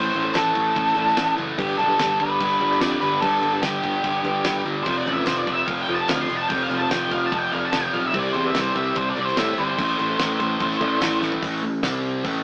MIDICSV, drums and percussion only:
0, 0, Header, 1, 2, 480
1, 0, Start_track
1, 0, Key_signature, 0, "minor"
1, 0, Tempo, 410397
1, 1849, Time_signature, 4, 2, 24, 8
1, 14543, End_track
2, 0, Start_track
2, 0, Title_t, "Drums"
2, 165, Note_on_c, 9, 49, 61
2, 282, Note_off_c, 9, 49, 0
2, 397, Note_on_c, 9, 54, 95
2, 409, Note_on_c, 9, 49, 75
2, 411, Note_on_c, 9, 38, 108
2, 514, Note_off_c, 9, 54, 0
2, 526, Note_off_c, 9, 49, 0
2, 528, Note_off_c, 9, 38, 0
2, 643, Note_on_c, 9, 49, 59
2, 649, Note_on_c, 9, 36, 80
2, 760, Note_off_c, 9, 49, 0
2, 766, Note_off_c, 9, 36, 0
2, 892, Note_on_c, 9, 36, 105
2, 894, Note_on_c, 9, 49, 77
2, 1009, Note_off_c, 9, 36, 0
2, 1011, Note_off_c, 9, 49, 0
2, 1017, Note_on_c, 9, 38, 36
2, 1130, Note_on_c, 9, 49, 56
2, 1134, Note_off_c, 9, 38, 0
2, 1247, Note_off_c, 9, 49, 0
2, 1253, Note_on_c, 9, 38, 32
2, 1368, Note_on_c, 9, 49, 80
2, 1368, Note_on_c, 9, 54, 95
2, 1370, Note_off_c, 9, 38, 0
2, 1370, Note_on_c, 9, 38, 121
2, 1485, Note_off_c, 9, 49, 0
2, 1485, Note_off_c, 9, 54, 0
2, 1487, Note_off_c, 9, 38, 0
2, 1612, Note_on_c, 9, 49, 58
2, 1729, Note_off_c, 9, 49, 0
2, 1853, Note_on_c, 9, 49, 86
2, 1856, Note_on_c, 9, 36, 118
2, 1970, Note_off_c, 9, 49, 0
2, 1973, Note_off_c, 9, 36, 0
2, 2094, Note_on_c, 9, 49, 65
2, 2211, Note_off_c, 9, 49, 0
2, 2331, Note_on_c, 9, 49, 80
2, 2333, Note_on_c, 9, 38, 108
2, 2337, Note_on_c, 9, 54, 101
2, 2448, Note_off_c, 9, 49, 0
2, 2450, Note_off_c, 9, 38, 0
2, 2454, Note_off_c, 9, 54, 0
2, 2570, Note_on_c, 9, 49, 61
2, 2573, Note_on_c, 9, 36, 89
2, 2687, Note_off_c, 9, 49, 0
2, 2690, Note_off_c, 9, 36, 0
2, 2811, Note_on_c, 9, 49, 90
2, 2813, Note_on_c, 9, 36, 110
2, 2928, Note_off_c, 9, 49, 0
2, 2930, Note_off_c, 9, 36, 0
2, 3049, Note_on_c, 9, 49, 62
2, 3166, Note_off_c, 9, 49, 0
2, 3177, Note_on_c, 9, 38, 35
2, 3290, Note_on_c, 9, 49, 86
2, 3292, Note_off_c, 9, 38, 0
2, 3292, Note_on_c, 9, 38, 117
2, 3296, Note_on_c, 9, 54, 99
2, 3407, Note_off_c, 9, 49, 0
2, 3409, Note_off_c, 9, 38, 0
2, 3413, Note_off_c, 9, 54, 0
2, 3529, Note_on_c, 9, 49, 66
2, 3646, Note_off_c, 9, 49, 0
2, 3769, Note_on_c, 9, 49, 97
2, 3771, Note_on_c, 9, 36, 116
2, 3886, Note_off_c, 9, 49, 0
2, 3888, Note_off_c, 9, 36, 0
2, 4008, Note_on_c, 9, 49, 65
2, 4125, Note_off_c, 9, 49, 0
2, 4241, Note_on_c, 9, 49, 77
2, 4242, Note_on_c, 9, 54, 92
2, 4244, Note_on_c, 9, 38, 112
2, 4358, Note_off_c, 9, 49, 0
2, 4359, Note_off_c, 9, 54, 0
2, 4361, Note_off_c, 9, 38, 0
2, 4483, Note_on_c, 9, 49, 62
2, 4486, Note_on_c, 9, 36, 83
2, 4600, Note_off_c, 9, 49, 0
2, 4603, Note_off_c, 9, 36, 0
2, 4722, Note_on_c, 9, 49, 79
2, 4727, Note_on_c, 9, 36, 109
2, 4839, Note_off_c, 9, 49, 0
2, 4844, Note_off_c, 9, 36, 0
2, 4967, Note_on_c, 9, 36, 82
2, 4969, Note_on_c, 9, 49, 61
2, 5084, Note_off_c, 9, 36, 0
2, 5086, Note_off_c, 9, 49, 0
2, 5198, Note_on_c, 9, 54, 98
2, 5199, Note_on_c, 9, 49, 81
2, 5202, Note_on_c, 9, 38, 118
2, 5315, Note_off_c, 9, 54, 0
2, 5316, Note_off_c, 9, 49, 0
2, 5319, Note_off_c, 9, 38, 0
2, 5446, Note_on_c, 9, 49, 56
2, 5563, Note_off_c, 9, 49, 0
2, 5686, Note_on_c, 9, 36, 122
2, 5687, Note_on_c, 9, 49, 89
2, 5803, Note_off_c, 9, 36, 0
2, 5804, Note_off_c, 9, 49, 0
2, 5933, Note_on_c, 9, 49, 63
2, 6050, Note_off_c, 9, 49, 0
2, 6149, Note_on_c, 9, 54, 87
2, 6161, Note_on_c, 9, 49, 79
2, 6163, Note_on_c, 9, 38, 112
2, 6266, Note_off_c, 9, 54, 0
2, 6278, Note_off_c, 9, 49, 0
2, 6280, Note_off_c, 9, 38, 0
2, 6400, Note_on_c, 9, 36, 88
2, 6401, Note_on_c, 9, 49, 59
2, 6517, Note_off_c, 9, 36, 0
2, 6517, Note_off_c, 9, 49, 0
2, 6638, Note_on_c, 9, 49, 84
2, 6641, Note_on_c, 9, 36, 110
2, 6755, Note_off_c, 9, 49, 0
2, 6758, Note_off_c, 9, 36, 0
2, 6886, Note_on_c, 9, 49, 60
2, 7003, Note_off_c, 9, 49, 0
2, 7111, Note_on_c, 9, 54, 92
2, 7123, Note_on_c, 9, 49, 84
2, 7126, Note_on_c, 9, 38, 120
2, 7228, Note_off_c, 9, 54, 0
2, 7240, Note_off_c, 9, 49, 0
2, 7243, Note_off_c, 9, 38, 0
2, 7360, Note_on_c, 9, 49, 66
2, 7477, Note_off_c, 9, 49, 0
2, 7602, Note_on_c, 9, 49, 95
2, 7603, Note_on_c, 9, 36, 124
2, 7719, Note_off_c, 9, 49, 0
2, 7720, Note_off_c, 9, 36, 0
2, 7844, Note_on_c, 9, 49, 68
2, 7961, Note_off_c, 9, 49, 0
2, 8081, Note_on_c, 9, 49, 88
2, 8082, Note_on_c, 9, 54, 86
2, 8083, Note_on_c, 9, 38, 114
2, 8198, Note_off_c, 9, 49, 0
2, 8199, Note_off_c, 9, 54, 0
2, 8200, Note_off_c, 9, 38, 0
2, 8319, Note_on_c, 9, 49, 65
2, 8321, Note_on_c, 9, 36, 89
2, 8436, Note_off_c, 9, 49, 0
2, 8438, Note_off_c, 9, 36, 0
2, 8563, Note_on_c, 9, 36, 106
2, 8564, Note_on_c, 9, 49, 79
2, 8680, Note_off_c, 9, 36, 0
2, 8681, Note_off_c, 9, 49, 0
2, 8804, Note_on_c, 9, 49, 58
2, 8921, Note_off_c, 9, 49, 0
2, 9037, Note_on_c, 9, 49, 88
2, 9040, Note_on_c, 9, 38, 108
2, 9048, Note_on_c, 9, 54, 96
2, 9154, Note_off_c, 9, 49, 0
2, 9157, Note_off_c, 9, 38, 0
2, 9165, Note_off_c, 9, 54, 0
2, 9283, Note_on_c, 9, 49, 59
2, 9399, Note_off_c, 9, 49, 0
2, 9519, Note_on_c, 9, 49, 85
2, 9522, Note_on_c, 9, 36, 127
2, 9636, Note_off_c, 9, 49, 0
2, 9639, Note_off_c, 9, 36, 0
2, 9754, Note_on_c, 9, 49, 63
2, 9871, Note_off_c, 9, 49, 0
2, 9995, Note_on_c, 9, 49, 78
2, 9997, Note_on_c, 9, 38, 111
2, 10008, Note_on_c, 9, 54, 88
2, 10112, Note_off_c, 9, 49, 0
2, 10114, Note_off_c, 9, 38, 0
2, 10125, Note_off_c, 9, 54, 0
2, 10236, Note_on_c, 9, 49, 61
2, 10243, Note_on_c, 9, 36, 84
2, 10353, Note_off_c, 9, 49, 0
2, 10360, Note_off_c, 9, 36, 0
2, 10473, Note_on_c, 9, 49, 81
2, 10482, Note_on_c, 9, 36, 113
2, 10590, Note_off_c, 9, 49, 0
2, 10599, Note_off_c, 9, 36, 0
2, 10720, Note_on_c, 9, 49, 57
2, 10837, Note_off_c, 9, 49, 0
2, 10843, Note_on_c, 9, 38, 35
2, 10959, Note_on_c, 9, 49, 90
2, 10960, Note_off_c, 9, 38, 0
2, 10961, Note_on_c, 9, 38, 108
2, 10972, Note_on_c, 9, 54, 92
2, 11076, Note_off_c, 9, 49, 0
2, 11078, Note_off_c, 9, 38, 0
2, 11089, Note_off_c, 9, 54, 0
2, 11204, Note_on_c, 9, 49, 64
2, 11321, Note_off_c, 9, 49, 0
2, 11444, Note_on_c, 9, 49, 100
2, 11445, Note_on_c, 9, 36, 124
2, 11561, Note_off_c, 9, 49, 0
2, 11562, Note_off_c, 9, 36, 0
2, 11686, Note_on_c, 9, 49, 69
2, 11803, Note_off_c, 9, 49, 0
2, 11920, Note_on_c, 9, 54, 93
2, 11922, Note_on_c, 9, 49, 80
2, 11925, Note_on_c, 9, 38, 115
2, 12037, Note_off_c, 9, 54, 0
2, 12039, Note_off_c, 9, 49, 0
2, 12041, Note_off_c, 9, 38, 0
2, 12160, Note_on_c, 9, 49, 61
2, 12164, Note_on_c, 9, 36, 91
2, 12276, Note_off_c, 9, 49, 0
2, 12281, Note_off_c, 9, 36, 0
2, 12398, Note_on_c, 9, 49, 86
2, 12403, Note_on_c, 9, 36, 118
2, 12515, Note_off_c, 9, 49, 0
2, 12520, Note_off_c, 9, 36, 0
2, 12530, Note_on_c, 9, 38, 31
2, 12639, Note_on_c, 9, 49, 67
2, 12644, Note_on_c, 9, 36, 86
2, 12647, Note_off_c, 9, 38, 0
2, 12756, Note_off_c, 9, 49, 0
2, 12761, Note_off_c, 9, 36, 0
2, 12878, Note_on_c, 9, 54, 100
2, 12884, Note_on_c, 9, 49, 90
2, 12886, Note_on_c, 9, 38, 125
2, 12995, Note_off_c, 9, 54, 0
2, 13001, Note_off_c, 9, 49, 0
2, 13003, Note_off_c, 9, 38, 0
2, 13122, Note_on_c, 9, 38, 61
2, 13239, Note_off_c, 9, 38, 0
2, 13240, Note_on_c, 9, 43, 86
2, 13356, Note_off_c, 9, 43, 0
2, 13363, Note_on_c, 9, 36, 116
2, 13365, Note_on_c, 9, 46, 64
2, 13480, Note_off_c, 9, 36, 0
2, 13482, Note_off_c, 9, 46, 0
2, 13836, Note_on_c, 9, 46, 60
2, 13838, Note_on_c, 9, 38, 107
2, 13846, Note_on_c, 9, 54, 90
2, 13953, Note_off_c, 9, 46, 0
2, 13955, Note_off_c, 9, 38, 0
2, 13963, Note_off_c, 9, 54, 0
2, 14321, Note_on_c, 9, 46, 59
2, 14324, Note_on_c, 9, 36, 106
2, 14438, Note_off_c, 9, 46, 0
2, 14441, Note_off_c, 9, 36, 0
2, 14543, End_track
0, 0, End_of_file